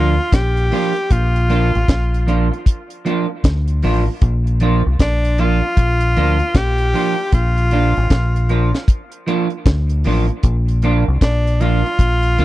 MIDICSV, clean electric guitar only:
0, 0, Header, 1, 3, 480
1, 0, Start_track
1, 0, Key_signature, -2, "major"
1, 0, Tempo, 777202
1, 682, Time_signature, 4, 2, 24, 8
1, 7689, End_track
2, 0, Start_track
2, 0, Title_t, "Clean electric guitar"
2, 0, Program_c, 0, 27
2, 0, Note_on_c, 0, 53, 83
2, 0, Note_on_c, 0, 58, 86
2, 0, Note_on_c, 0, 62, 88
2, 0, Note_on_c, 0, 65, 83
2, 81, Note_off_c, 0, 53, 0
2, 83, Note_off_c, 0, 58, 0
2, 85, Note_off_c, 0, 62, 0
2, 86, Note_off_c, 0, 65, 0
2, 441, Note_on_c, 0, 53, 85
2, 445, Note_on_c, 0, 58, 90
2, 448, Note_on_c, 0, 62, 89
2, 451, Note_on_c, 0, 65, 96
2, 564, Note_off_c, 0, 53, 0
2, 566, Note_off_c, 0, 58, 0
2, 568, Note_off_c, 0, 62, 0
2, 569, Note_off_c, 0, 65, 0
2, 921, Note_on_c, 0, 53, 83
2, 925, Note_on_c, 0, 58, 94
2, 927, Note_on_c, 0, 62, 83
2, 931, Note_on_c, 0, 65, 90
2, 1044, Note_off_c, 0, 53, 0
2, 1046, Note_off_c, 0, 58, 0
2, 1047, Note_off_c, 0, 62, 0
2, 1049, Note_off_c, 0, 65, 0
2, 1400, Note_on_c, 0, 53, 77
2, 1404, Note_on_c, 0, 58, 84
2, 1407, Note_on_c, 0, 62, 82
2, 1412, Note_on_c, 0, 65, 92
2, 1524, Note_off_c, 0, 53, 0
2, 1526, Note_off_c, 0, 58, 0
2, 1528, Note_off_c, 0, 62, 0
2, 1530, Note_off_c, 0, 65, 0
2, 1882, Note_on_c, 0, 53, 89
2, 1887, Note_on_c, 0, 58, 82
2, 1890, Note_on_c, 0, 62, 91
2, 1893, Note_on_c, 0, 65, 100
2, 2005, Note_off_c, 0, 53, 0
2, 2008, Note_off_c, 0, 58, 0
2, 2009, Note_off_c, 0, 62, 0
2, 2011, Note_off_c, 0, 65, 0
2, 2365, Note_on_c, 0, 53, 82
2, 2368, Note_on_c, 0, 58, 86
2, 2373, Note_on_c, 0, 62, 94
2, 2375, Note_on_c, 0, 65, 106
2, 2487, Note_off_c, 0, 53, 0
2, 2489, Note_off_c, 0, 58, 0
2, 2491, Note_off_c, 0, 62, 0
2, 2492, Note_off_c, 0, 65, 0
2, 2846, Note_on_c, 0, 53, 94
2, 2850, Note_on_c, 0, 58, 89
2, 2853, Note_on_c, 0, 62, 87
2, 2857, Note_on_c, 0, 65, 100
2, 2967, Note_off_c, 0, 53, 0
2, 2970, Note_off_c, 0, 58, 0
2, 2971, Note_off_c, 0, 62, 0
2, 2973, Note_off_c, 0, 65, 0
2, 3326, Note_on_c, 0, 53, 84
2, 3328, Note_on_c, 0, 58, 85
2, 3331, Note_on_c, 0, 62, 83
2, 3335, Note_on_c, 0, 65, 94
2, 3448, Note_off_c, 0, 53, 0
2, 3449, Note_off_c, 0, 58, 0
2, 3450, Note_off_c, 0, 62, 0
2, 3452, Note_off_c, 0, 65, 0
2, 3808, Note_on_c, 0, 53, 85
2, 3811, Note_on_c, 0, 58, 87
2, 3815, Note_on_c, 0, 62, 91
2, 3817, Note_on_c, 0, 65, 96
2, 3929, Note_off_c, 0, 53, 0
2, 3930, Note_off_c, 0, 58, 0
2, 3933, Note_off_c, 0, 62, 0
2, 3933, Note_off_c, 0, 65, 0
2, 4283, Note_on_c, 0, 53, 88
2, 4289, Note_on_c, 0, 58, 79
2, 4291, Note_on_c, 0, 62, 92
2, 4294, Note_on_c, 0, 65, 96
2, 4406, Note_off_c, 0, 53, 0
2, 4409, Note_off_c, 0, 58, 0
2, 4410, Note_off_c, 0, 62, 0
2, 4412, Note_off_c, 0, 65, 0
2, 4766, Note_on_c, 0, 53, 69
2, 4770, Note_on_c, 0, 58, 87
2, 4773, Note_on_c, 0, 62, 90
2, 4776, Note_on_c, 0, 65, 85
2, 4888, Note_off_c, 0, 53, 0
2, 4890, Note_off_c, 0, 58, 0
2, 4891, Note_off_c, 0, 62, 0
2, 4893, Note_off_c, 0, 65, 0
2, 5245, Note_on_c, 0, 53, 79
2, 5248, Note_on_c, 0, 58, 77
2, 5252, Note_on_c, 0, 62, 76
2, 5256, Note_on_c, 0, 65, 79
2, 5368, Note_off_c, 0, 53, 0
2, 5369, Note_off_c, 0, 58, 0
2, 5371, Note_off_c, 0, 62, 0
2, 5373, Note_off_c, 0, 65, 0
2, 5722, Note_on_c, 0, 53, 89
2, 5727, Note_on_c, 0, 58, 95
2, 5729, Note_on_c, 0, 62, 104
2, 5733, Note_on_c, 0, 65, 100
2, 5846, Note_off_c, 0, 53, 0
2, 5848, Note_off_c, 0, 58, 0
2, 5849, Note_off_c, 0, 62, 0
2, 5851, Note_off_c, 0, 65, 0
2, 6206, Note_on_c, 0, 53, 94
2, 6211, Note_on_c, 0, 58, 98
2, 6215, Note_on_c, 0, 62, 96
2, 6217, Note_on_c, 0, 65, 91
2, 6328, Note_off_c, 0, 53, 0
2, 6330, Note_off_c, 0, 58, 0
2, 6332, Note_off_c, 0, 62, 0
2, 6333, Note_off_c, 0, 65, 0
2, 6688, Note_on_c, 0, 53, 89
2, 6692, Note_on_c, 0, 58, 97
2, 6695, Note_on_c, 0, 62, 102
2, 6699, Note_on_c, 0, 65, 93
2, 6808, Note_off_c, 0, 53, 0
2, 6810, Note_off_c, 0, 58, 0
2, 6812, Note_off_c, 0, 62, 0
2, 6814, Note_off_c, 0, 65, 0
2, 7166, Note_on_c, 0, 53, 80
2, 7169, Note_on_c, 0, 58, 80
2, 7174, Note_on_c, 0, 62, 86
2, 7176, Note_on_c, 0, 65, 81
2, 7287, Note_off_c, 0, 53, 0
2, 7289, Note_off_c, 0, 58, 0
2, 7291, Note_off_c, 0, 62, 0
2, 7292, Note_off_c, 0, 65, 0
2, 7646, Note_on_c, 0, 53, 81
2, 7650, Note_on_c, 0, 58, 94
2, 7654, Note_on_c, 0, 62, 83
2, 7656, Note_on_c, 0, 65, 98
2, 7689, Note_off_c, 0, 53, 0
2, 7689, Note_off_c, 0, 58, 0
2, 7689, Note_off_c, 0, 62, 0
2, 7689, Note_off_c, 0, 65, 0
2, 7689, End_track
3, 0, Start_track
3, 0, Title_t, "Muted clean electric guitar strokes"
3, 1555, Note_on_c, 9, 29, 39
3, 1617, Note_off_c, 9, 29, 0
3, 3479, Note_on_c, 9, 29, 40
3, 3541, Note_off_c, 9, 29, 0
3, 5400, Note_on_c, 9, 29, 45
3, 5462, Note_off_c, 9, 29, 0
3, 7325, Note_on_c, 9, 29, 52
3, 7386, Note_off_c, 9, 29, 0
3, 7689, End_track
0, 0, End_of_file